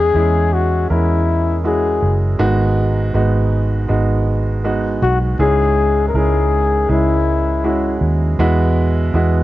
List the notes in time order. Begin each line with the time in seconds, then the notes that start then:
Already playing: E2 E3 G#3 C#4 E4 G#4
0.14 E2 G#3 C#4 E4 G#4
0.53 F#4
0.90 E2 G#3 C#4 E4 A#4
1.64 G#3 C#4 E4 F#4 G#4
2.02 F#1
2.39 G#1 G#2 D#3 G#3 B3 D#4 F#4
3.14 G#1 G#3 B3 D#4 F#4
3.89 G#1 G#3 B3 D#4 F#4
4.64 G#3 B3 D#4 F#4
5.02 B1 F#4
5.39 C#2 G#2 G#3 C#4 E4 G#4
6.08 A#4
6.14 C#2 G#3 C#4 E4 G#4 A#4
6.89 C#2 G#3 C#4 E4 G#4
7.64 G#3 C#4 E4 F#4
8.01 D#2
8.39 E2 B2 G#3 B3 E4 F#4
9.14 E2 G#3 B3 E4 F#4